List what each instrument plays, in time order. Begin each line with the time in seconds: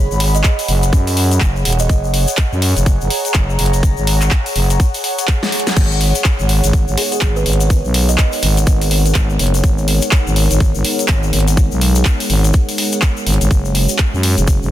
Already playing: ambient pad G#4 C#5 F#5 B5
0.10 fm bass G#1, shaker
0.20 open hi-hat
0.35 kalimba D#5, closed hi-hat, shaker
0.44 kick, clap, shaker
0.59 open hi-hat, shaker
0.68 fm bass F#1, open hi-hat
0.83 closed hi-hat, shaker
0.93 fm bass F#2, kick, closed hi-hat, shaker
1.07 open hi-hat, shaker
1.17 open hi-hat
1.31 closed hi-hat, shaker
1.41 fm bass F#1, kick, clap, closed hi-hat, shaker
1.56 shaker
1.65 fm bass E1, open hi-hat
1.73 closed hi-hat
1.79 kalimba D#5, closed hi-hat, shaker
1.89 fm bass F#1, kalimba D#5, kick, closed hi-hat, shaker
2.04 shaker
2.14 open hi-hat
2.28 closed hi-hat, shaker
2.37 ambient pad A#5, kick, clap, shaker
2.52 fm bass F#2, shaker
2.62 open hi-hat
2.77 fm bass F#1, closed hi-hat, shaker
2.86 kick, closed hi-hat, shaker
3.01 fm bass F#1, shaker
3.10 open hi-hat
3.25 closed hi-hat, shaker
3.34 fm bass F#1, kick, clap, closed hi-hat, shaker
3.50 shaker
3.59 fm bass F#1, open hi-hat
3.66 closed hi-hat
3.73 closed hi-hat, shaker
3.83 kick, closed hi-hat, shaker
3.97 fm bass G#1, shaker
4.07 open hi-hat
4.21 clap, closed hi-hat, shaker
4.31 kick, clap, shaker
4.46 open hi-hat, shaker
4.56 fm bass F#1, open hi-hat
4.70 closed hi-hat, shaker
4.80 kick, closed hi-hat, shaker
4.94 open hi-hat, shaker
5.04 open hi-hat
5.18 closed hi-hat, shaker
5.28 kick, clap, closed hi-hat, shaker
5.43 snare, shaker
5.52 open hi-hat
5.60 closed hi-hat
5.67 snare, closed hi-hat, shaker
5.76 fm bass G#1, analog synth pad G#3 B3 D#4 A#4, kick, closed hi-hat, crash, shaker
5.91 shaker
6.01 open hi-hat
6.15 closed hi-hat, shaker
6.24 kick, clap, shaker
6.39 fm bass G#1, shaker
6.49 open hi-hat
6.64 fm bass G#1, closed hi-hat, shaker
6.73 kick, closed hi-hat, shaker
6.88 fm bass G#1, shaker
6.97 kalimba G#4, open hi-hat
7.12 kalimba G#4, closed hi-hat, shaker
7.21 fm bass G#1, kick, clap, closed hi-hat, shaker
7.36 kalimba B4, shaker
7.46 fm bass G#1, open hi-hat
7.53 closed hi-hat
7.60 closed hi-hat, shaker
7.70 kick, closed hi-hat, shaker
7.85 fm bass B1, shaker
7.94 open hi-hat
8.09 kalimba D#5, closed hi-hat, shaker
8.18 kick, clap, shaker
8.32 open hi-hat, shaker
8.43 fm bass G#1, open hi-hat
8.57 closed hi-hat, shaker
8.67 fm bass G#1, kick, closed hi-hat, shaker
8.81 open hi-hat, shaker
8.91 open hi-hat
9.06 closed hi-hat, shaker
9.15 fm bass G#1, kick, clap, closed hi-hat, shaker
9.30 shaker
9.39 fm bass F#1, open hi-hat
9.47 closed hi-hat
9.54 closed hi-hat, shaker
9.64 fm bass G#1, kick, closed hi-hat, shaker
9.78 shaker
9.88 open hi-hat
10.02 closed hi-hat, shaker
10.11 kick, clap, shaker
10.27 fm bass G#1, shaker
10.36 open hi-hat
10.51 fm bass G#1, closed hi-hat, shaker
10.60 kick, closed hi-hat, shaker
10.75 fm bass G#1, shaker
10.85 open hi-hat
10.99 closed hi-hat, shaker
11.08 fm bass G#1, kick, clap, closed hi-hat, shaker
11.23 shaker
11.33 fm bass G#1, open hi-hat
11.40 closed hi-hat
11.48 closed hi-hat, shaker
11.57 kick, closed hi-hat, shaker
11.72 fm bass B1, shaker
11.81 open hi-hat
11.95 closed hi-hat, shaker
12.05 kick, clap, shaker
12.20 open hi-hat, shaker
12.30 fm bass G#1, open hi-hat
12.44 closed hi-hat, shaker
12.53 kick, closed hi-hat, shaker
12.69 open hi-hat, shaker
12.78 open hi-hat
12.92 closed hi-hat, shaker
13.02 kick, clap, closed hi-hat, shaker
13.17 shaker
13.27 fm bass G#1, open hi-hat
13.34 closed hi-hat
13.41 fm bass G#1, closed hi-hat, shaker
13.51 fm bass F#1, analog synth pad C#4 F#4 C#5, ambient pad G#4, kick, closed hi-hat, shaker
13.65 ambient pad C#5, shaker
13.75 open hi-hat
13.89 closed hi-hat, shaker
13.99 kick, clap, shaker
14.14 fm bass F#2, shaker
14.22 ambient pad F#5, open hi-hat
14.38 fm bass F#1, closed hi-hat, shaker
14.47 kick, closed hi-hat, shaker
14.62 fm bass F#1, shaker